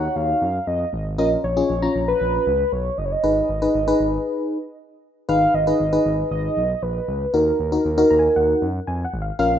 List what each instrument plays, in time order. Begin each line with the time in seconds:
Already playing: fm electric piano D#4 F#4 C#5, soft synth lead F#5
0.16 analog synth bass D#2, soft synth lead F5
0.42 analog synth bass F#2
0.67 analog synth bass F2, soft synth lead D#5
0.93 analog synth bass G#1
1.18 analog synth bass A#1, fm electric piano C#4 F4 A#4, soft synth lead D#5
1.44 analog synth bass A#1, soft synth lead C#5
1.57 fm electric piano C#4 F4 G#4
1.70 analog synth bass A#1
1.82 fm electric piano C#4 F4 A#5
1.95 analog synth bass A#1
2.08 soft synth lead B4
2.21 analog synth bass A#1
2.47 analog synth bass C#2
2.72 analog synth bass B1, soft synth lead C#5
2.98 analog synth bass F#1, soft synth lead D#5
3.05 soft synth lead C#5
3.12 soft synth lead D#5
3.24 analog synth bass G#1, fm electric piano D#4 G#4 B4
3.49 analog synth bass G#1
3.62 fm electric piano D#4 G#4 B4
3.75 analog synth bass G#1
3.88 fm electric piano D#4 G#4 B4
4.00 analog synth bass G#1
5.29 analog synth bass G#1, fm electric piano D#4 G#4 B4, soft synth lead F5
5.54 analog synth bass G#1, soft synth lead D#5
5.67 fm electric piano D#4 G#4 B4
5.80 analog synth bass G#1
5.93 fm electric piano D#4 G#4 B4
6.06 analog synth bass G#1
6.31 analog synth bass G#1, soft synth lead D#5
6.57 analog synth bass B1
6.82 analog synth bass A#1, soft synth lead B4
7.08 analog synth bass C#2
7.34 analog synth bass D#2, fm electric piano D#4 F#4 A#4, soft synth lead A#4
7.59 analog synth bass D#2
7.72 fm electric piano D#4 F#4 A#4
7.85 analog synth bass D#2
7.98 fm electric piano D#4 F#4 A#4
8.11 analog synth bass D#2, fm electric piano A#5
8.19 fm electric piano G#5
8.36 analog synth bass D#2, fm electric piano F#5
8.62 analog synth bass F#2
8.87 analog synth bass F2, fm electric piano G#5
9.05 fm electric piano F#5
9.13 analog synth bass G#1
9.22 fm electric piano F5
9.39 analog synth bass A#1, fm electric piano C#4 F4 A#4, soft synth lead F5